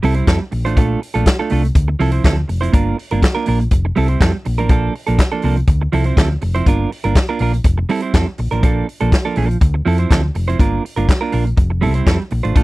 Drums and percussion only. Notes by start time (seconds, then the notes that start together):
0.03 open hi-hat
0.14 closed hi-hat
0.27 kick, snare, clap, closed hi-hat
0.52 open hi-hat
0.66 closed hi-hat
0.77 kick, closed hi-hat
1.03 open hi-hat
1.14 closed hi-hat
1.26 kick, snare, clap, closed hi-hat
1.49 open hi-hat
1.65 closed hi-hat
1.75 kick, closed hi-hat
2.00 open hi-hat
2.12 closed hi-hat
2.24 kick, snare, clap, closed hi-hat
2.49 open hi-hat
2.63 closed hi-hat
2.74 kick, closed hi-hat
2.99 open hi-hat
3.11 closed hi-hat
3.22 kick, snare, clap, closed hi-hat
3.46 open hi-hat
3.61 closed hi-hat
3.71 kick, closed hi-hat
3.96 open hi-hat
4.08 closed hi-hat
4.21 kick, snare, clap, closed hi-hat
4.45 open hi-hat
4.58 closed hi-hat
4.69 kick, closed hi-hat
4.95 open hi-hat
5.07 closed hi-hat
5.19 kick, snare, clap, closed hi-hat
5.42 open hi-hat
5.57 closed hi-hat
5.67 kick, closed hi-hat
5.93 open hi-hat
6.04 closed hi-hat
6.17 kick, snare, clap, closed hi-hat
6.41 open hi-hat
6.55 closed hi-hat
6.66 kick, closed hi-hat
6.92 open hi-hat
7.04 closed hi-hat
7.15 kick, snare, clap, closed hi-hat
7.39 open hi-hat
7.54 closed hi-hat
7.64 kick, closed hi-hat
7.89 open hi-hat
8.00 closed hi-hat
8.14 kick, snare, clap, closed hi-hat
8.38 open hi-hat
8.52 closed hi-hat
8.63 kick, closed hi-hat
8.89 open hi-hat
9.00 closed hi-hat
9.12 kick, snare, clap, closed hi-hat
9.36 open hi-hat
9.51 closed hi-hat
9.61 kick, closed hi-hat
9.87 open hi-hat
9.98 closed hi-hat
10.11 kick, snare, clap, closed hi-hat
10.35 open hi-hat
10.49 closed hi-hat
10.59 kick, closed hi-hat
10.85 open hi-hat
10.97 closed hi-hat
11.09 kick, snare, clap, closed hi-hat
11.32 open hi-hat
11.47 closed hi-hat
11.57 kick, closed hi-hat
11.82 open hi-hat
11.94 closed hi-hat
12.06 kick, snare, clap, closed hi-hat
12.30 open hi-hat
12.45 closed hi-hat
12.56 kick, closed hi-hat